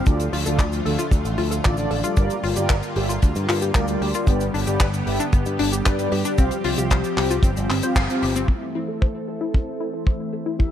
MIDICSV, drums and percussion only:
0, 0, Header, 1, 2, 480
1, 0, Start_track
1, 0, Tempo, 526316
1, 62, Time_signature, 4, 2, 24, 8
1, 9771, End_track
2, 0, Start_track
2, 0, Title_t, "Drums"
2, 55, Note_on_c, 9, 69, 62
2, 60, Note_on_c, 9, 42, 73
2, 61, Note_on_c, 9, 36, 118
2, 146, Note_off_c, 9, 69, 0
2, 151, Note_off_c, 9, 42, 0
2, 152, Note_off_c, 9, 36, 0
2, 179, Note_on_c, 9, 42, 59
2, 185, Note_on_c, 9, 69, 52
2, 270, Note_off_c, 9, 42, 0
2, 276, Note_off_c, 9, 69, 0
2, 302, Note_on_c, 9, 46, 113
2, 393, Note_off_c, 9, 46, 0
2, 418, Note_on_c, 9, 69, 75
2, 426, Note_on_c, 9, 42, 53
2, 510, Note_off_c, 9, 69, 0
2, 517, Note_off_c, 9, 42, 0
2, 535, Note_on_c, 9, 36, 127
2, 539, Note_on_c, 9, 69, 68
2, 542, Note_on_c, 9, 39, 110
2, 545, Note_on_c, 9, 42, 69
2, 626, Note_off_c, 9, 36, 0
2, 631, Note_off_c, 9, 69, 0
2, 633, Note_off_c, 9, 39, 0
2, 636, Note_off_c, 9, 42, 0
2, 660, Note_on_c, 9, 69, 51
2, 668, Note_on_c, 9, 42, 57
2, 751, Note_off_c, 9, 69, 0
2, 759, Note_off_c, 9, 42, 0
2, 784, Note_on_c, 9, 46, 99
2, 875, Note_off_c, 9, 46, 0
2, 903, Note_on_c, 9, 69, 79
2, 904, Note_on_c, 9, 42, 55
2, 994, Note_off_c, 9, 69, 0
2, 995, Note_off_c, 9, 42, 0
2, 1017, Note_on_c, 9, 36, 115
2, 1020, Note_on_c, 9, 69, 72
2, 1026, Note_on_c, 9, 42, 72
2, 1108, Note_off_c, 9, 36, 0
2, 1112, Note_off_c, 9, 69, 0
2, 1117, Note_off_c, 9, 42, 0
2, 1142, Note_on_c, 9, 69, 49
2, 1143, Note_on_c, 9, 42, 55
2, 1233, Note_off_c, 9, 69, 0
2, 1234, Note_off_c, 9, 42, 0
2, 1257, Note_on_c, 9, 46, 99
2, 1348, Note_off_c, 9, 46, 0
2, 1384, Note_on_c, 9, 42, 54
2, 1384, Note_on_c, 9, 69, 74
2, 1475, Note_off_c, 9, 42, 0
2, 1475, Note_off_c, 9, 69, 0
2, 1497, Note_on_c, 9, 42, 73
2, 1502, Note_on_c, 9, 69, 59
2, 1503, Note_on_c, 9, 39, 106
2, 1508, Note_on_c, 9, 36, 117
2, 1588, Note_off_c, 9, 42, 0
2, 1593, Note_off_c, 9, 69, 0
2, 1594, Note_off_c, 9, 39, 0
2, 1599, Note_off_c, 9, 36, 0
2, 1615, Note_on_c, 9, 69, 50
2, 1623, Note_on_c, 9, 42, 61
2, 1706, Note_off_c, 9, 69, 0
2, 1714, Note_off_c, 9, 42, 0
2, 1740, Note_on_c, 9, 46, 93
2, 1831, Note_off_c, 9, 46, 0
2, 1855, Note_on_c, 9, 42, 57
2, 1862, Note_on_c, 9, 69, 71
2, 1946, Note_off_c, 9, 42, 0
2, 1953, Note_off_c, 9, 69, 0
2, 1976, Note_on_c, 9, 69, 63
2, 1977, Note_on_c, 9, 42, 81
2, 1980, Note_on_c, 9, 36, 107
2, 2067, Note_off_c, 9, 69, 0
2, 2068, Note_off_c, 9, 42, 0
2, 2072, Note_off_c, 9, 36, 0
2, 2097, Note_on_c, 9, 42, 57
2, 2101, Note_on_c, 9, 69, 53
2, 2188, Note_off_c, 9, 42, 0
2, 2192, Note_off_c, 9, 69, 0
2, 2221, Note_on_c, 9, 46, 103
2, 2312, Note_off_c, 9, 46, 0
2, 2336, Note_on_c, 9, 42, 62
2, 2338, Note_on_c, 9, 69, 78
2, 2427, Note_off_c, 9, 42, 0
2, 2429, Note_off_c, 9, 69, 0
2, 2457, Note_on_c, 9, 39, 114
2, 2460, Note_on_c, 9, 69, 66
2, 2461, Note_on_c, 9, 36, 117
2, 2462, Note_on_c, 9, 42, 77
2, 2548, Note_off_c, 9, 39, 0
2, 2551, Note_off_c, 9, 69, 0
2, 2552, Note_off_c, 9, 36, 0
2, 2554, Note_off_c, 9, 42, 0
2, 2579, Note_on_c, 9, 42, 52
2, 2579, Note_on_c, 9, 69, 46
2, 2670, Note_off_c, 9, 42, 0
2, 2670, Note_off_c, 9, 69, 0
2, 2699, Note_on_c, 9, 46, 95
2, 2790, Note_off_c, 9, 46, 0
2, 2824, Note_on_c, 9, 69, 72
2, 2830, Note_on_c, 9, 42, 49
2, 2915, Note_off_c, 9, 69, 0
2, 2921, Note_off_c, 9, 42, 0
2, 2939, Note_on_c, 9, 42, 81
2, 2944, Note_on_c, 9, 36, 113
2, 2944, Note_on_c, 9, 69, 72
2, 3030, Note_off_c, 9, 42, 0
2, 3035, Note_off_c, 9, 36, 0
2, 3035, Note_off_c, 9, 69, 0
2, 3059, Note_on_c, 9, 69, 47
2, 3066, Note_on_c, 9, 42, 56
2, 3150, Note_off_c, 9, 69, 0
2, 3157, Note_off_c, 9, 42, 0
2, 3183, Note_on_c, 9, 46, 110
2, 3184, Note_on_c, 9, 39, 56
2, 3274, Note_off_c, 9, 46, 0
2, 3275, Note_off_c, 9, 39, 0
2, 3299, Note_on_c, 9, 69, 85
2, 3302, Note_on_c, 9, 42, 58
2, 3390, Note_off_c, 9, 69, 0
2, 3393, Note_off_c, 9, 42, 0
2, 3418, Note_on_c, 9, 36, 126
2, 3418, Note_on_c, 9, 39, 121
2, 3419, Note_on_c, 9, 69, 66
2, 3422, Note_on_c, 9, 42, 83
2, 3509, Note_off_c, 9, 36, 0
2, 3509, Note_off_c, 9, 39, 0
2, 3510, Note_off_c, 9, 69, 0
2, 3513, Note_off_c, 9, 42, 0
2, 3536, Note_on_c, 9, 69, 51
2, 3538, Note_on_c, 9, 42, 61
2, 3627, Note_off_c, 9, 69, 0
2, 3629, Note_off_c, 9, 42, 0
2, 3665, Note_on_c, 9, 46, 90
2, 3756, Note_off_c, 9, 46, 0
2, 3776, Note_on_c, 9, 42, 61
2, 3778, Note_on_c, 9, 69, 75
2, 3868, Note_off_c, 9, 42, 0
2, 3870, Note_off_c, 9, 69, 0
2, 3895, Note_on_c, 9, 69, 65
2, 3896, Note_on_c, 9, 36, 112
2, 3904, Note_on_c, 9, 42, 87
2, 3986, Note_off_c, 9, 69, 0
2, 3987, Note_off_c, 9, 36, 0
2, 3995, Note_off_c, 9, 42, 0
2, 4017, Note_on_c, 9, 69, 54
2, 4021, Note_on_c, 9, 42, 55
2, 4108, Note_off_c, 9, 69, 0
2, 4112, Note_off_c, 9, 42, 0
2, 4144, Note_on_c, 9, 46, 109
2, 4235, Note_off_c, 9, 46, 0
2, 4259, Note_on_c, 9, 42, 57
2, 4259, Note_on_c, 9, 69, 76
2, 4350, Note_off_c, 9, 42, 0
2, 4350, Note_off_c, 9, 69, 0
2, 4379, Note_on_c, 9, 42, 78
2, 4380, Note_on_c, 9, 69, 61
2, 4381, Note_on_c, 9, 36, 115
2, 4381, Note_on_c, 9, 39, 110
2, 4470, Note_off_c, 9, 42, 0
2, 4471, Note_off_c, 9, 69, 0
2, 4472, Note_off_c, 9, 36, 0
2, 4472, Note_off_c, 9, 39, 0
2, 4502, Note_on_c, 9, 42, 52
2, 4502, Note_on_c, 9, 69, 47
2, 4593, Note_off_c, 9, 42, 0
2, 4594, Note_off_c, 9, 69, 0
2, 4623, Note_on_c, 9, 46, 104
2, 4714, Note_off_c, 9, 46, 0
2, 4743, Note_on_c, 9, 42, 56
2, 4743, Note_on_c, 9, 69, 76
2, 4834, Note_off_c, 9, 42, 0
2, 4835, Note_off_c, 9, 69, 0
2, 4858, Note_on_c, 9, 42, 82
2, 4861, Note_on_c, 9, 36, 127
2, 4863, Note_on_c, 9, 69, 64
2, 4949, Note_off_c, 9, 42, 0
2, 4952, Note_off_c, 9, 36, 0
2, 4955, Note_off_c, 9, 69, 0
2, 4977, Note_on_c, 9, 69, 47
2, 4982, Note_on_c, 9, 42, 59
2, 5068, Note_off_c, 9, 69, 0
2, 5073, Note_off_c, 9, 42, 0
2, 5100, Note_on_c, 9, 46, 117
2, 5191, Note_off_c, 9, 46, 0
2, 5217, Note_on_c, 9, 42, 57
2, 5226, Note_on_c, 9, 69, 83
2, 5308, Note_off_c, 9, 42, 0
2, 5317, Note_off_c, 9, 69, 0
2, 5343, Note_on_c, 9, 39, 100
2, 5346, Note_on_c, 9, 69, 70
2, 5347, Note_on_c, 9, 36, 111
2, 5349, Note_on_c, 9, 42, 81
2, 5434, Note_off_c, 9, 39, 0
2, 5437, Note_off_c, 9, 69, 0
2, 5438, Note_off_c, 9, 36, 0
2, 5440, Note_off_c, 9, 42, 0
2, 5462, Note_on_c, 9, 42, 61
2, 5463, Note_on_c, 9, 69, 52
2, 5553, Note_off_c, 9, 42, 0
2, 5554, Note_off_c, 9, 69, 0
2, 5579, Note_on_c, 9, 46, 94
2, 5671, Note_off_c, 9, 46, 0
2, 5700, Note_on_c, 9, 69, 83
2, 5705, Note_on_c, 9, 42, 61
2, 5791, Note_off_c, 9, 69, 0
2, 5796, Note_off_c, 9, 42, 0
2, 5820, Note_on_c, 9, 42, 76
2, 5820, Note_on_c, 9, 69, 72
2, 5822, Note_on_c, 9, 36, 110
2, 5911, Note_off_c, 9, 42, 0
2, 5912, Note_off_c, 9, 69, 0
2, 5914, Note_off_c, 9, 36, 0
2, 5937, Note_on_c, 9, 42, 60
2, 5942, Note_on_c, 9, 69, 48
2, 6028, Note_off_c, 9, 42, 0
2, 6033, Note_off_c, 9, 69, 0
2, 6059, Note_on_c, 9, 46, 116
2, 6150, Note_off_c, 9, 46, 0
2, 6180, Note_on_c, 9, 42, 64
2, 6184, Note_on_c, 9, 69, 71
2, 6271, Note_off_c, 9, 42, 0
2, 6275, Note_off_c, 9, 69, 0
2, 6297, Note_on_c, 9, 42, 72
2, 6302, Note_on_c, 9, 36, 109
2, 6304, Note_on_c, 9, 69, 64
2, 6308, Note_on_c, 9, 39, 120
2, 6388, Note_off_c, 9, 42, 0
2, 6393, Note_off_c, 9, 36, 0
2, 6395, Note_off_c, 9, 69, 0
2, 6399, Note_off_c, 9, 39, 0
2, 6420, Note_on_c, 9, 42, 52
2, 6423, Note_on_c, 9, 69, 53
2, 6511, Note_off_c, 9, 42, 0
2, 6514, Note_off_c, 9, 69, 0
2, 6544, Note_on_c, 9, 39, 67
2, 6546, Note_on_c, 9, 46, 95
2, 6635, Note_off_c, 9, 39, 0
2, 6637, Note_off_c, 9, 46, 0
2, 6663, Note_on_c, 9, 69, 72
2, 6666, Note_on_c, 9, 42, 53
2, 6755, Note_off_c, 9, 69, 0
2, 6757, Note_off_c, 9, 42, 0
2, 6773, Note_on_c, 9, 36, 124
2, 6779, Note_on_c, 9, 42, 87
2, 6780, Note_on_c, 9, 69, 72
2, 6864, Note_off_c, 9, 36, 0
2, 6870, Note_off_c, 9, 42, 0
2, 6872, Note_off_c, 9, 69, 0
2, 6901, Note_on_c, 9, 69, 49
2, 6905, Note_on_c, 9, 42, 55
2, 6992, Note_off_c, 9, 69, 0
2, 6996, Note_off_c, 9, 42, 0
2, 7023, Note_on_c, 9, 39, 58
2, 7026, Note_on_c, 9, 46, 98
2, 7114, Note_off_c, 9, 39, 0
2, 7117, Note_off_c, 9, 46, 0
2, 7132, Note_on_c, 9, 42, 56
2, 7140, Note_on_c, 9, 69, 72
2, 7223, Note_off_c, 9, 42, 0
2, 7232, Note_off_c, 9, 69, 0
2, 7257, Note_on_c, 9, 69, 56
2, 7258, Note_on_c, 9, 36, 119
2, 7261, Note_on_c, 9, 42, 78
2, 7263, Note_on_c, 9, 39, 123
2, 7349, Note_off_c, 9, 69, 0
2, 7350, Note_off_c, 9, 36, 0
2, 7353, Note_off_c, 9, 42, 0
2, 7354, Note_off_c, 9, 39, 0
2, 7384, Note_on_c, 9, 69, 45
2, 7388, Note_on_c, 9, 42, 56
2, 7475, Note_off_c, 9, 69, 0
2, 7479, Note_off_c, 9, 42, 0
2, 7501, Note_on_c, 9, 46, 100
2, 7592, Note_off_c, 9, 46, 0
2, 7620, Note_on_c, 9, 42, 57
2, 7623, Note_on_c, 9, 69, 74
2, 7711, Note_off_c, 9, 42, 0
2, 7714, Note_off_c, 9, 69, 0
2, 7735, Note_on_c, 9, 36, 94
2, 7739, Note_on_c, 9, 42, 77
2, 7827, Note_off_c, 9, 36, 0
2, 7830, Note_off_c, 9, 42, 0
2, 7861, Note_on_c, 9, 42, 51
2, 7952, Note_off_c, 9, 42, 0
2, 7990, Note_on_c, 9, 42, 85
2, 8081, Note_off_c, 9, 42, 0
2, 8109, Note_on_c, 9, 42, 47
2, 8200, Note_off_c, 9, 42, 0
2, 8226, Note_on_c, 9, 36, 114
2, 8317, Note_off_c, 9, 36, 0
2, 8347, Note_on_c, 9, 42, 50
2, 8438, Note_off_c, 9, 42, 0
2, 8464, Note_on_c, 9, 42, 100
2, 8555, Note_off_c, 9, 42, 0
2, 8582, Note_on_c, 9, 42, 50
2, 8673, Note_off_c, 9, 42, 0
2, 8704, Note_on_c, 9, 36, 111
2, 8704, Note_on_c, 9, 42, 70
2, 8795, Note_off_c, 9, 36, 0
2, 8795, Note_off_c, 9, 42, 0
2, 8826, Note_on_c, 9, 42, 51
2, 8918, Note_off_c, 9, 42, 0
2, 8941, Note_on_c, 9, 42, 84
2, 9032, Note_off_c, 9, 42, 0
2, 9064, Note_on_c, 9, 42, 52
2, 9155, Note_off_c, 9, 42, 0
2, 9181, Note_on_c, 9, 36, 101
2, 9272, Note_off_c, 9, 36, 0
2, 9302, Note_on_c, 9, 42, 55
2, 9393, Note_off_c, 9, 42, 0
2, 9416, Note_on_c, 9, 42, 81
2, 9507, Note_off_c, 9, 42, 0
2, 9543, Note_on_c, 9, 42, 57
2, 9634, Note_off_c, 9, 42, 0
2, 9665, Note_on_c, 9, 36, 100
2, 9757, Note_off_c, 9, 36, 0
2, 9771, End_track
0, 0, End_of_file